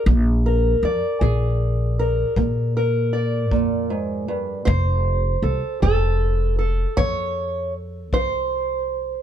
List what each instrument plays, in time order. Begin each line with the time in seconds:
0.06 upright bass A#1, steel-string acoustic guitar A#2, kick
0.46 steel-string acoustic guitar A#4
0.83 upright bass F2, steel-string acoustic guitar D5
1.21 upright bass A#1, steel-string acoustic guitar F3 G#4, kick
1.99 steel-string acoustic guitar A#4
2.36 upright bass A#2, steel-string acoustic guitar A#2, kick
2.77 steel-string acoustic guitar A#4
3.13 steel-string acoustic guitar D5
3.51 upright bass F2, steel-string acoustic guitar A#2, kick
3.90 steel-string acoustic guitar G#2
4.28 steel-string acoustic guitar G2
4.65 upright bass F1, steel-string acoustic guitar F2 C5, kick
5.42 upright bass C2, steel-string acoustic guitar A4
5.82 upright bass F1, steel-string acoustic guitar F3 A4, kick
6.59 steel-string acoustic guitar A4
6.97 steel-string acoustic guitar F2 C#5, upright bass F2, kick
8.12 upright bass C2, steel-string acoustic guitar F3 C5, kick